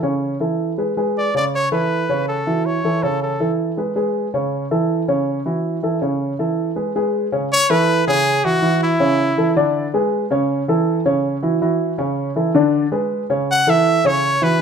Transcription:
0.03 C#3 C#4 C#5
0.40 E3 E4 A4
0.78 G#3 G#4 B4
0.97 G#3 G#4 B4
1.18 D5
1.34 C#3 C#4 C#5 D5
1.56 C#5
1.72 E3 E4 A4 B4
2.09 C#3 C#4 C#5
2.28 A4
2.47 E3 E4 F#4
2.66 C#5
2.84 E3 E4 A4
3.03 C#3 C#4 A4 C#5
3.22 A4
3.40 E3 E4 A4
3.77 G#3 G#4 B4
3.96 G#3 G#4 B4
4.34 C#3 C#4 C#5
4.71 E3 E4 A4
5.08 C#3 C#4 C#5
5.46 E3 E4 F#4
5.83 E3 E4 A4
6.02 C#3 C#4 C#5
6.39 E3 E4 A4
6.76 G#3 G#4 B4
6.96 G#3 G#4 B4
7.32 C#3 C#4 C#5
7.53 C#5
7.70 E3 E4 A4 B4
8.07 C#3 C#4 G#4 C#5
8.45 E3 E4 F#4
8.62 E3 E4 F#4
8.83 E4
9.00 C#3 C#4 C#5
9.37 E3 E4 A4
9.56 D3 D4 D5
9.94 G#3 G#4 B4
10.30 C#3 C#4 C#5
10.68 E3 E4 A4
11.05 C#3 C#4 C#5
11.43 E3 E4 F#4
11.62 E3 E4 F#4
11.98 C#3 C#4 C#5
12.36 E3 E4 A4
12.54 D3 D4 D5
12.92 G#3 G#4 B4
13.30 C#3 C#4 C#5
13.52 F#5
13.67 E3 E4 A4 E5
14.05 C#3 C#4 C#5
14.42 E3 E4 F#4 B4

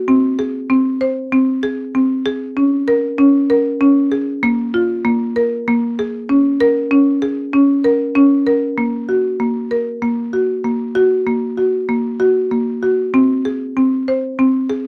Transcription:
0.08 C4
0.39 G#4
0.70 C4
1.01 C5
1.32 C4
1.63 G#4
1.95 C4
2.26 G#4
2.57 C#4
2.88 A#4
3.18 C#4
3.50 A#4
3.81 C#4
4.12 G#4
4.43 A#3
4.74 F4
5.05 A#3
5.36 A#4
5.68 A#3
5.99 G#4
6.29 C#4
6.60 A#4
6.91 C#4
7.22 G#4
7.53 C#4
7.84 A#4
8.16 C#4
8.47 A#4
8.78 A#3
9.09 F#4
9.40 A#3
9.71 A#4
10.02 A#3
10.33 F#4
10.64 A#3
10.95 F#4
11.27 A#3
11.57 F#4
11.89 A#3
12.20 F#4
12.51 A#3
12.83 F#4
13.14 C4
13.45 G#4
13.77 C4
14.08 C5
14.39 C4
14.70 G#4

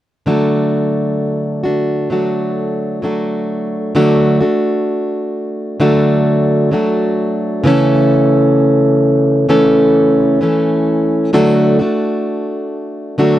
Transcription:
0.26 D3 F#3 A3 D4 F#4
1.64 A3 D4 F#4
2.10 F#3 A3 D4 F#4
3.02 F#3 A3 D4 F#4
3.95 D3 F#3 A3 D4 F#4
4.40 A3 D4 F#4
5.80 D3 F#3 A3 D4 F#4
6.71 F#3 A3 D4 F#4
7.64 C#3 E3 A3 C#4 A4
9.49 C#3 E3 A3 C#4 A4
10.41 E3 A3 C#4 A4
11.33 D3 F#3 A3 D4 F#4
11.79 A3 D4 F#4
13.18 D3 F#3 A3 D4 F#4

